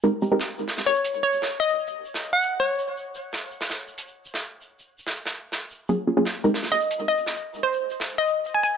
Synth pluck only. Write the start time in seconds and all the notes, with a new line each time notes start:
0.86 C#5
1.23 C#5
1.60 D#5
2.33 F#5
2.60 C#5
6.72 D#5
7.08 D#5
7.63 C5
8.18 D#5
8.54 G#5
8.63 G#5